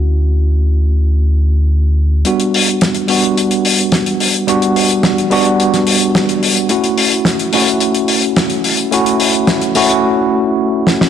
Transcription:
<<
  \new Staff \with { instrumentName = "Tine electric piano" } { \time 4/4 \key g \lydian \tempo 4 = 108 <a cis' e' fis'>1 | <g b d' fis'>4. <g b d' fis'>2~ <g b d' fis'>8 | <g b d' fis'>4. <g b d' fis'>2~ <g b d' fis'>8 | <a cis' e' fis'>4. <a cis' e' fis'>2~ <a cis' e' fis'>8 |
<a cis' e' fis'>4. <a cis' e' fis'>2~ <a cis' e' fis'>8 | }
  \new Staff \with { instrumentName = "Analog synth bass" } { \clef bass \time 4/4 \key g \lydian d,1 | r1 | r1 | r1 |
r1 | }
  \new DrumStaff \with { instrumentName = "Drums" } \drummode { \time 4/4 r4 r4 r4 r4 | hh16 hh16 hho16 hh16 <hh sn>16 hh16 hho16 hh16 hh16 hh16 hho16 hh16 <hh sn>16 hh16 hho16 hh16 | hh16 hh16 hho16 hh16 <hh sn>16 hh16 hho16 hh16 hh16 <hh sn>16 hho16 hh16 <hh sn>16 hh16 hho16 hh16 | hh16 hh16 hho16 hh16 <hh sn>16 hh16 hho16 hh16 hh16 hh16 hho16 hh16 <hh sn>16 hh16 hho16 hh16 |
hh16 hh16 hho16 hh16 <hh sn>16 hh16 hho16 hh16 r4 r8 sn16 sn16 | }
>>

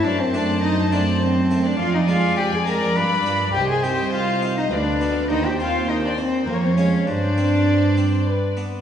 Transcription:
<<
  \new Staff \with { instrumentName = "Violin section" } { \time 3/4 \key d \phrygian \tempo 4 = 102 a''2. | \key c \minor aes''2 f''4 | ees''2 f''4 | g''2 f''4 |
d''2~ d''8 r8 | }
  \new Staff \with { instrumentName = "Violin section" } { \time 3/4 \key d \phrygian d''16 c''16 d''8 ees''8 d''8 c''8. d''16 | \key c \minor f''16 ees''16 f''8 g''16 aes''16 bes''8 b''4 | g''16 aes''16 g''8 f''8. ees''16 d''4 | ees''16 g''16 f''8 ees''16 d''16 c''8 bes'16 c''16 des''8 |
d''2~ d''8 r8 | }
  \new Staff \with { instrumentName = "Viola section" } { \time 3/4 \key d \phrygian c''2. | \key c \minor d''2. | c''2 b'4 | c''2 des''4 |
c''2 b'8 r8 | }
  \new Staff \with { instrumentName = "Cello" } { \time 3/4 \key d \phrygian d'16 c'16 d'8 ees'8 d'8 c'8. d'16 | \key c \minor f'16 ees'16 f'8 g'16 aes'16 bes'8 b'4 | g'16 aes'16 g'8 f'8. ees'16 d'4 | ees'16 g'16 f'8 ees'16 d'16 c'8 bes16 c'16 des'8 |
d'2~ d'8 r8 | }
  \new Staff \with { instrumentName = "Harpsichord" } { \time 3/4 \key d \phrygian r8 <a c' d'>4 <a c' d'>4 <a c' d'>8 | \key c \minor r8 <aes d'>4 <aes d'>8 r8 <d' f'>8 | r8 <c' ees'>4 <c' ees'>8 r8 <b d'>8 | r8 c'4 c'8 r8 <aes des' f'>8 |
r8 <c' d'>4 <c' d'>8 r8 <b d'>8 | }
  \new Staff \with { instrumentName = "Harpsichord" } { \clef bass \time 3/4 \key d \phrygian fis,2. | \key c \minor f,2 g,4 | c,2 d,4 | ees,2 f,4 |
g,2~ g,8 r8 | }
  \new Staff \with { instrumentName = "Cello section" } { \clef bass \time 3/4 \key d \phrygian fis,2. | \key c \minor f,2 g,4 | c,2 d,4 | ees,2 f,4 |
g,2~ g,8 r8 | }
>>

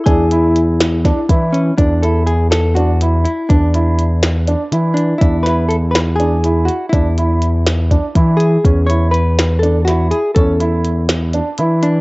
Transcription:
<<
  \new Staff \with { instrumentName = "Hollow-body jazz guitar" } { \time 7/8 \key e \mixolydian \tempo 4 = 122 gis'2~ gis'8 r8 cis'8 | d'8 a'8 gis'8 a'8 fis'4 e'8 | d'2. d'8 | e'8 b'8 a'8 b'8 gis'4 fis'8 |
e'2. gis'8~ | gis'8 cis''8 b'4 a'8 fis'8 gis'8 | a'4. r4. d'8 | }
  \new Staff \with { instrumentName = "Vibraphone" } { \time 7/8 \key e \mixolydian e'2~ e'8 r4 | r2. r8 | r2. r8 | r2. r8 |
r2. r8 | r2. r8 | r2. r8 | }
  \new Staff \with { instrumentName = "Grand piano" } { \time 7/8 \key e \mixolydian d'8 e'4 r8 d'8 e'4 | d'8 e'4 r8 d'8 e'4 | d'8 e'4 r8 d'8 e'4 | d'8 e'4 r8 d'8 e'4 |
d'8 e'4 r8 d'8 e'4 | cis'8 e'4 r8 d'8 e'4 | cis'8 e'4 r8 d'8 e'4 | }
  \new Staff \with { instrumentName = "Analog synth bass" } { \clef bass \time 7/8 \key e \mixolydian e,2~ e,8 e4 | e,2.~ e,8 | e,2~ e,8 e4 | e,2.~ e,8 |
e,2~ e,8 e4 | e,2.~ e,8 | e,2~ e,8 e4 | }
  \new DrumStaff \with { instrumentName = "Drums" } \drummode { \time 7/8 <hh bd>8 hh8 hh8 <hh sn>8 <hh bd sn>8 <hh bd>8 hh8 | <hh bd>8 hh8 hh8 <hh sn>8 hh8 hh8 hh8 | <hh bd>8 hh8 hh8 <hh sn>8 hh8 hh8 hh8 | <hh bd>8 <hh sn>8 hh8 <hh sn>8 hh8 hh8 hh8 |
<hh bd>8 hh8 hh8 <hh sn>8 <hh bd>8 <hh bd>8 hh8 | <hh bd>8 hh8 hh8 <hh sn>8 hh8 <hh sn>8 hh8 | <hh bd>8 hh8 hh8 <hh sn>8 hh8 hh8 hh8 | }
>>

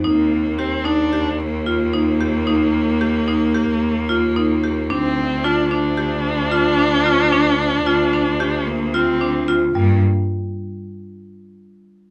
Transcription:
<<
  \new Staff \with { instrumentName = "Marimba" } { \time 9/8 \key d \phrygian \tempo 4. = 74 ees'4 g'8 ees'8 g'4 f'8 ees'8 g'8 | ees'4 g'8 ees'8 g'4 f'8 ees'8 g'8 | d'4 f'8 d'8 g'4 f'8 d'8 f'8 | d'4 f'8 d'8 g'4 f'8 d'8 f'8 |
g8 r1 | }
  \new Staff \with { instrumentName = "Viola" } { \time 9/8 \key d \phrygian bes4 c'8 d'4 bes2~ | bes1~ bes8 | c'4 d'8 d'2.~ | d'2~ d'8 bes8 c'4 r8 |
bes8 r1 | }
  \new Staff \with { instrumentName = "Cello" } { \clef bass \time 9/8 \key d \phrygian ees,1~ ees,8~ | ees,1~ ees,8 | d,1~ d,8~ | d,1~ d,8 |
g,8 r1 | }
>>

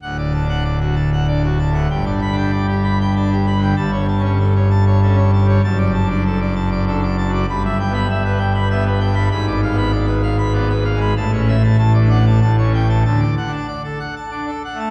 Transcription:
<<
  \new Staff \with { instrumentName = "Pipe organ" } { \time 3/4 \key d \major \tempo 4 = 97 fis''16 d''16 a''16 fis''16 d''16 fis'16 a''16 fis''16 d''16 fis'16 a''16 fis''16 | g''16 d''16 b''16 g''16 d''16 g'16 b''16 g''16 d''16 g'16 b''16 g''16 | a''16 cis''16 a''16 cis''16 a'16 cis''16 a''16 cis''16 a'16 cis''16 a''16 cis''16 | a''16 d''16 a''16 d''16 a'16 d''16 a''16 d''16 a'16 d''16 a''16 d''16 |
b''16 e''16 g''16 b''16 e''16 b'16 g''16 b''16 e''16 b'16 g''16 b''16 | b''16 d''16 eis''16 b''16 d''16 b'16 eis''16 b''16 d''16 b'16 eis''16 b''16 | a''16 cis''16 e''16 a''16 a''16 d''16 fis''16 a''16 a''16 cis''16 g''16 a''16 | a''16 d''16 fis''16 a''16 d''16 a'16 fis''16 a''16 d''16 a'16 fis''16 a''16 | }
  \new Staff \with { instrumentName = "Pipe organ" } { \clef bass \time 3/4 \key d \major << { \tuplet 3/2 { d,4 d'8 } r4 \tuplet 3/2 { d'8 r8 a,8 } | \tuplet 3/2 { g,4 d'8 } r4 \tuplet 3/2 { d'8 r8 d8 } | \tuplet 3/2 { g,4 cis'8 } r4 \tuplet 3/2 { cis'8 r8 g8 } | \tuplet 3/2 { fis,4 d'8 } r4 \tuplet 3/2 { d'8 r8 fis8 } |
\tuplet 3/2 { g,4 b8 } r4 \tuplet 3/2 { b8 r8 g8 } | \tuplet 3/2 { gis,4 b8 } r4 \tuplet 3/2 { b8 r8 gis8 } | \tuplet 3/2 { a,8 cis'8 r8 a,8 d'8 r8 a,8 cis'8 r8 } | \tuplet 3/2 { d8 r8 d'8 } r4 \tuplet 3/2 { d'8 r8 a8 } | } \\ { d,,2. | g,,2. | g,,2. | fis,,2. |
g,,2. | gis,,2. | a,,4 a,,4 a,,4 | d,8 r2 r8 | } >> }
>>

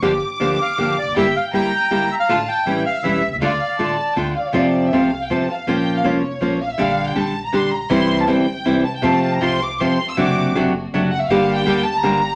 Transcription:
<<
  \new Staff \with { instrumentName = "Violin section" } { \time 3/4 \key d \minor \tempo 4 = 160 << { d'''2. | g''4 bes''2 | a''4 e''2 | f''4 a''4 g''8 f''8 |
\key f \major r2. | r2. | r2. | r2. |
r2. | r2. | r2. | } \\ { r2. | r2. | r2. | r2 r8 d''16 cis''16 |
d''8. e''16 f''8. g''16 a''8 f''8 | g''8. f''16 des''4. f''16 e''16 | f''8. g''16 a''8. bes''16 c'''8 bes''8 | c'''8. a''16 g''4. a''16 g''16 |
a''8. bes''16 c'''8 d'''8 c'''8. e'''16 | d'''4 r4. fis''16 e''16 | f''8. g''8. a''8 bes''4 | } >> }
  \new Staff \with { instrumentName = "Bandoneon" } { \time 3/4 \key d \minor r4. f''8 f''8 d''8 | e''8 f''8 g''4. e''16 f''16~ | f''8 g''4 f''8 e''8. e''16 | d''2 r4 |
\key f \major r2. | r2. | r2. | r2. |
r2. | r2. | r2. | }
  \new Staff \with { instrumentName = "String section" } { \time 3/4 \key d \minor <bes f' g'>8 r8 <bes f' g'>8 r8 <bes f' g'>8 r8 | <bes e' g'>8 r8 <bes e' g'>8 r8 <bes e' g'>8 r8 | <a d' f'>8 r8 <a cis' g'>8 r8 <a cis' g'>8 r8 | <a d' f'>8 r8 <a d' f'>8 r8 <a d' f'>8 r8 |
\key f \major r2. | r2. | r2. | r2. |
<a c' f'>4 <a c' f'>4 <a c' f'>4 | <c' d' fis'>4 <c' d' fis'>4 <c' d' fis'>4 | <bes d' g'>4 <bes d' g'>4 <bes d' g'>4 | }
  \new Staff \with { instrumentName = "Nylon-string guitar" } { \time 3/4 \key d \minor <d f bes d' g'>16 r8. <d f bes d' g'>8 r8 <d f bes d' g'>8 r8 | <g bes e' g'>16 r8. <g bes e' g'>8 r8 <g bes e' g'>8 r8 | <d a d' f'>16 r8. <e g cis' e'>8 r8 <e g cis' e'>8 r8 | <d a d' f'>16 r8. <d a d' f'>8 r8 <d a d' f'>8 r8 |
\key f \major <c f a c' f'>4 <c f a c' f'>8 r8 <c f a c' f'>8 r8 | <f bes des' f'>4 <f bes des' f'>8 r8 <f bes des' f'>8 r8 | <d g d' g'>4 <d g d' g'>8 r8 <d g d' g'>8 r8 | <c e g c' e'>4 <c e g c' e'>8 r8 <c e g c' e'>8 r8 |
<c f a c' f'>4 <c f a c' f'>8 r8 <c f a c' f'>8 r8 | <c fis a d' fis'>4 <c fis a d' fis'>8 r8 <c fis a d' fis'>8 r8 | <d g bes d' g'>4 <d g bes d' g'>8 r8 <d g bes d' g'>8 r8 | }
  \new Staff \with { instrumentName = "Upright bass" } { \clef bass \time 3/4 \key d \minor g,,16. r8 r32 d,16. r8 r32 g,,16. r16 e,,32 f,,32 fis,,32 | g,,16. r8 r32 g,,16. r8 r32 g,,16. r8 r32 | a,,16. r8 r32 a,,16. r8 r32 e,,16. r16 b,,32 c,32 cis,32 | d,16. r8 r32 a,,16. r8 r32 d,16. r8 r32 |
\key f \major f,4 c,4 f,4 | bes,,4 f,,4 bes,,4 | bes,,4 bes,,4 bes,,4 | c,4 g,,4 c,4 |
f,4 c,4 f,4 | fis,,4 fis,,4 fis,,4 | g,,4 d,4 g,,4 | }
>>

